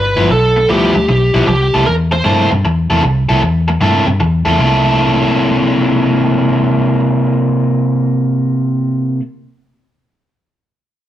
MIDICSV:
0, 0, Header, 1, 5, 480
1, 0, Start_track
1, 0, Tempo, 389610
1, 1817, Time_signature, 4, 2, 24, 8
1, 13654, End_track
2, 0, Start_track
2, 0, Title_t, "Lead electric guitar"
2, 0, Program_c, 0, 29
2, 0, Note_on_c, 0, 71, 91
2, 364, Note_off_c, 0, 71, 0
2, 389, Note_on_c, 0, 69, 92
2, 830, Note_off_c, 0, 69, 0
2, 864, Note_on_c, 0, 67, 76
2, 1803, Note_off_c, 0, 67, 0
2, 1817, Note_on_c, 0, 67, 80
2, 2263, Note_off_c, 0, 67, 0
2, 2295, Note_on_c, 0, 70, 92
2, 2382, Note_off_c, 0, 70, 0
2, 2617, Note_on_c, 0, 72, 69
2, 3063, Note_off_c, 0, 72, 0
2, 13654, End_track
3, 0, Start_track
3, 0, Title_t, "Overdriven electric guitar"
3, 0, Program_c, 1, 29
3, 206, Note_on_c, 1, 64, 78
3, 210, Note_on_c, 1, 59, 76
3, 219, Note_on_c, 1, 53, 78
3, 221, Note_on_c, 1, 43, 59
3, 352, Note_off_c, 1, 43, 0
3, 352, Note_off_c, 1, 53, 0
3, 359, Note_off_c, 1, 59, 0
3, 363, Note_off_c, 1, 64, 0
3, 848, Note_on_c, 1, 53, 85
3, 850, Note_on_c, 1, 43, 75
3, 855, Note_on_c, 1, 59, 83
3, 862, Note_on_c, 1, 64, 74
3, 1155, Note_off_c, 1, 64, 0
3, 1160, Note_off_c, 1, 59, 0
3, 1168, Note_off_c, 1, 53, 0
3, 1176, Note_off_c, 1, 43, 0
3, 1652, Note_on_c, 1, 64, 80
3, 1661, Note_on_c, 1, 59, 75
3, 1664, Note_on_c, 1, 53, 68
3, 1665, Note_on_c, 1, 43, 64
3, 1809, Note_off_c, 1, 64, 0
3, 1817, Note_off_c, 1, 59, 0
3, 1819, Note_off_c, 1, 53, 0
3, 1820, Note_off_c, 1, 43, 0
3, 2145, Note_on_c, 1, 69, 71
3, 2152, Note_on_c, 1, 58, 60
3, 2153, Note_on_c, 1, 64, 75
3, 2161, Note_on_c, 1, 48, 64
3, 2279, Note_off_c, 1, 48, 0
3, 2286, Note_off_c, 1, 58, 0
3, 2286, Note_off_c, 1, 64, 0
3, 2288, Note_off_c, 1, 69, 0
3, 2761, Note_on_c, 1, 48, 67
3, 2766, Note_on_c, 1, 58, 82
3, 2772, Note_on_c, 1, 64, 84
3, 2775, Note_on_c, 1, 69, 83
3, 3080, Note_off_c, 1, 69, 0
3, 3085, Note_off_c, 1, 64, 0
3, 3091, Note_off_c, 1, 48, 0
3, 3093, Note_off_c, 1, 58, 0
3, 3573, Note_on_c, 1, 69, 68
3, 3576, Note_on_c, 1, 64, 77
3, 3583, Note_on_c, 1, 58, 73
3, 3584, Note_on_c, 1, 48, 72
3, 3722, Note_off_c, 1, 48, 0
3, 3723, Note_off_c, 1, 58, 0
3, 3727, Note_off_c, 1, 64, 0
3, 3729, Note_off_c, 1, 69, 0
3, 4052, Note_on_c, 1, 69, 78
3, 4057, Note_on_c, 1, 64, 83
3, 4063, Note_on_c, 1, 58, 73
3, 4068, Note_on_c, 1, 48, 63
3, 4197, Note_off_c, 1, 48, 0
3, 4200, Note_off_c, 1, 64, 0
3, 4202, Note_off_c, 1, 58, 0
3, 4209, Note_off_c, 1, 69, 0
3, 4691, Note_on_c, 1, 48, 66
3, 4699, Note_on_c, 1, 58, 85
3, 4700, Note_on_c, 1, 64, 80
3, 4707, Note_on_c, 1, 69, 80
3, 4996, Note_off_c, 1, 69, 0
3, 5003, Note_off_c, 1, 64, 0
3, 5007, Note_off_c, 1, 58, 0
3, 5015, Note_off_c, 1, 48, 0
3, 5486, Note_on_c, 1, 69, 82
3, 5487, Note_on_c, 1, 64, 76
3, 5492, Note_on_c, 1, 58, 68
3, 5496, Note_on_c, 1, 48, 68
3, 5611, Note_off_c, 1, 48, 0
3, 5626, Note_on_c, 1, 48, 86
3, 5630, Note_off_c, 1, 58, 0
3, 5645, Note_on_c, 1, 58, 96
3, 5646, Note_off_c, 1, 64, 0
3, 5649, Note_off_c, 1, 69, 0
3, 5661, Note_on_c, 1, 64, 107
3, 5679, Note_on_c, 1, 69, 105
3, 11331, Note_off_c, 1, 48, 0
3, 11341, Note_off_c, 1, 58, 0
3, 11349, Note_off_c, 1, 64, 0
3, 11357, Note_off_c, 1, 69, 0
3, 13654, End_track
4, 0, Start_track
4, 0, Title_t, "Fingered electric bass"
4, 0, Program_c, 2, 33
4, 0, Note_on_c, 2, 31, 72
4, 184, Note_off_c, 2, 31, 0
4, 220, Note_on_c, 2, 31, 80
4, 361, Note_off_c, 2, 31, 0
4, 378, Note_on_c, 2, 35, 87
4, 804, Note_off_c, 2, 35, 0
4, 863, Note_on_c, 2, 38, 82
4, 1147, Note_off_c, 2, 38, 0
4, 1178, Note_on_c, 2, 38, 81
4, 1319, Note_off_c, 2, 38, 0
4, 1338, Note_on_c, 2, 35, 71
4, 1624, Note_off_c, 2, 35, 0
4, 1654, Note_on_c, 2, 35, 76
4, 1797, Note_off_c, 2, 35, 0
4, 1811, Note_on_c, 2, 36, 77
4, 2100, Note_off_c, 2, 36, 0
4, 2148, Note_on_c, 2, 36, 83
4, 2284, Note_off_c, 2, 36, 0
4, 2299, Note_on_c, 2, 40, 88
4, 2724, Note_off_c, 2, 40, 0
4, 2772, Note_on_c, 2, 43, 86
4, 3060, Note_off_c, 2, 43, 0
4, 3107, Note_on_c, 2, 43, 91
4, 3243, Note_off_c, 2, 43, 0
4, 3253, Note_on_c, 2, 40, 65
4, 3540, Note_off_c, 2, 40, 0
4, 3579, Note_on_c, 2, 40, 84
4, 3718, Note_off_c, 2, 40, 0
4, 3736, Note_on_c, 2, 36, 77
4, 4022, Note_off_c, 2, 36, 0
4, 4065, Note_on_c, 2, 36, 88
4, 4201, Note_off_c, 2, 36, 0
4, 4222, Note_on_c, 2, 40, 84
4, 4645, Note_off_c, 2, 40, 0
4, 4696, Note_on_c, 2, 43, 85
4, 4982, Note_off_c, 2, 43, 0
4, 5014, Note_on_c, 2, 43, 75
4, 5155, Note_off_c, 2, 43, 0
4, 5180, Note_on_c, 2, 40, 78
4, 5464, Note_off_c, 2, 40, 0
4, 5495, Note_on_c, 2, 40, 80
4, 5636, Note_off_c, 2, 40, 0
4, 5659, Note_on_c, 2, 36, 69
4, 11298, Note_off_c, 2, 36, 0
4, 13654, End_track
5, 0, Start_track
5, 0, Title_t, "Muted overdriven electric guitar strokes"
5, 367, Note_on_c, 9, 29, 50
5, 490, Note_off_c, 9, 29, 0
5, 693, Note_on_c, 9, 29, 42
5, 817, Note_off_c, 9, 29, 0
5, 1170, Note_on_c, 9, 29, 46
5, 1293, Note_off_c, 9, 29, 0
5, 1337, Note_on_c, 9, 29, 45
5, 1460, Note_off_c, 9, 29, 0
5, 1814, Note_on_c, 9, 29, 41
5, 1937, Note_off_c, 9, 29, 0
5, 2294, Note_on_c, 9, 29, 43
5, 2417, Note_off_c, 9, 29, 0
5, 2604, Note_on_c, 9, 29, 48
5, 2727, Note_off_c, 9, 29, 0
5, 3095, Note_on_c, 9, 29, 56
5, 3218, Note_off_c, 9, 29, 0
5, 3261, Note_on_c, 9, 29, 40
5, 3384, Note_off_c, 9, 29, 0
5, 3737, Note_on_c, 9, 29, 41
5, 3860, Note_off_c, 9, 29, 0
5, 4212, Note_on_c, 9, 29, 42
5, 4335, Note_off_c, 9, 29, 0
5, 4533, Note_on_c, 9, 29, 42
5, 4656, Note_off_c, 9, 29, 0
5, 5010, Note_on_c, 9, 29, 48
5, 5134, Note_off_c, 9, 29, 0
5, 5175, Note_on_c, 9, 29, 39
5, 5298, Note_off_c, 9, 29, 0
5, 13654, End_track
0, 0, End_of_file